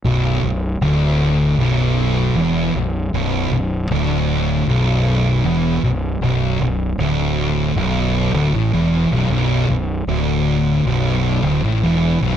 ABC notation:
X:1
M:4/4
L:1/16
Q:1/4=78
K:Bm
V:1 name="Distorted electric guitar" clef=bass
B,,,2 B,,,2 D,,4 B,,,4 E,,2 B,,,2 | B,,,2 B,,,2 D,,4 B,,,4 E,,2 B,,,2 | B,,,2 B,,,2 D,,4 B,,,3 D,, A,, E,,2 B,,, | B,,,2 B,,,2 D,,4 B,,,3 D,, A,, E,,2 B,,, |]
V:2 name="Distorted electric guitar" clef=bass
B,,,2 B,,,2 D,,4 B,,,4 E,,2 B,,,2 | B,,,2 B,,,2 D,,4 B,,,4 E,,2 B,,,2 | B,,,2 B,,,2 D,,4 B,,,3 D,, A,, E,,2 B,,, | B,,,2 B,,,2 D,,4 B,,,3 D,, A,, E,,2 B,,, |]
V:3 name="Fingered electric bass" clef=bass
B,,,,2 B,,,,2 D,,,4 B,,,,4 E,,,2 B,,,,2 | B,,,,2 B,,,,2 D,,,4 B,,,,4 E,,,2 B,,,,2 | B,,,,2 B,,,,2 D,,,4 B,,,,3 D,,, A,,, E,,,2 B,,,, | B,,,,2 B,,,,2 D,,,4 B,,,,3 D,,, A,,, E,,,2 B,,,, |]